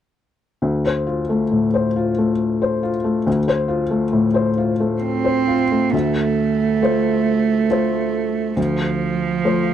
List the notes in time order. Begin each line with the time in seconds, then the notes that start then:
0.62 D2
0.86 C5
1.07 F4
1.29 A3
1.51 A2
1.74 C5
1.96 F4
2.18 A3
2.62 C5
2.83 F4
3.04 A3
3.26 D2
3.48 C5
3.68 F4
3.90 A3
4.13 A2
4.34 C5
4.58 F4
4.80 A3
5.02 C4
5.24 C5
5.48 F4
5.71 A3
5.92 D2 A3
6.82 A3 F4 C5
7.70 A3 F4 C5
8.57 D2 F3
9.45 A3 F4 C5